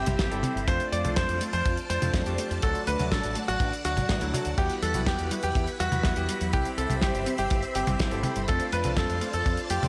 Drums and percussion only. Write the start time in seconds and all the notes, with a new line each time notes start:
0.06 kick, closed hi-hat, high tom
0.19 kick, snare, closed hi-hat
0.32 closed hi-hat
0.43 closed hi-hat, high tom
0.57 closed hi-hat
0.68 kick, closed hi-hat
0.80 closed hi-hat
0.93 closed hi-hat
1.05 closed hi-hat, high tom
1.16 kick, snare, closed hi-hat
1.29 closed hi-hat
1.41 closed hi-hat
1.53 closed hi-hat
1.66 kick, closed hi-hat
1.77 closed hi-hat
1.90 closed hi-hat
2.02 closed hi-hat, high tom
2.14 kick, snare, closed hi-hat
2.26 closed hi-hat
2.38 closed hi-hat
2.51 closed hi-hat
2.62 kick, closed hi-hat
2.75 closed hi-hat
2.87 closed hi-hat
2.99 closed hi-hat, high tom
3.12 kick, snare, closed hi-hat
3.24 closed hi-hat
3.35 closed hi-hat
3.48 closed hi-hat
3.60 kick, closed hi-hat
3.73 closed hi-hat
3.85 closed hi-hat
3.97 kick, closed hi-hat, high tom
4.09 kick, snare, closed hi-hat
4.21 closed hi-hat
4.34 closed hi-hat, high tom
4.45 closed hi-hat
4.58 kick, closed hi-hat
4.70 closed hi-hat
4.83 closed hi-hat
4.94 closed hi-hat, high tom
5.06 kick, snare, closed hi-hat
5.19 closed hi-hat
5.31 closed hi-hat
5.43 closed hi-hat
5.55 kick, closed hi-hat
5.67 closed hi-hat
5.80 closed hi-hat
5.92 closed hi-hat, high tom
6.03 kick, snare, closed hi-hat
6.16 closed hi-hat
6.29 closed hi-hat
6.41 closed hi-hat
6.53 kick, closed hi-hat
6.65 closed hi-hat
6.78 closed hi-hat
6.90 closed hi-hat, high tom
7.01 kick, snare, closed hi-hat
7.15 closed hi-hat
7.26 closed hi-hat
7.38 closed hi-hat
7.50 kick, closed hi-hat
7.63 closed hi-hat
7.75 closed hi-hat
7.87 kick, closed hi-hat, high tom
7.99 kick, snare, closed hi-hat
8.11 closed hi-hat
8.23 closed hi-hat, high tom
8.36 closed hi-hat
8.48 kick, closed hi-hat
8.60 closed hi-hat
8.72 closed hi-hat
8.84 closed hi-hat, high tom
8.97 kick, snare, closed hi-hat
9.10 closed hi-hat
9.21 closed hi-hat
9.33 closed hi-hat
9.46 kick, closed hi-hat
9.57 closed hi-hat
9.70 closed hi-hat
9.83 closed hi-hat, high tom